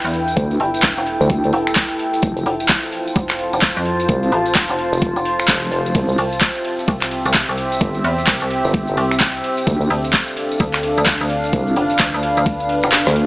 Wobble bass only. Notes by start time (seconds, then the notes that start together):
0.37 D2
1.21 D2
2.23 F1
4.09 C2
4.93 F1
5.48 F1
5.72 F1
5.95 C2
7.81 G1
8.65 G1
9.67 D2
11.53 C2
13.07 D2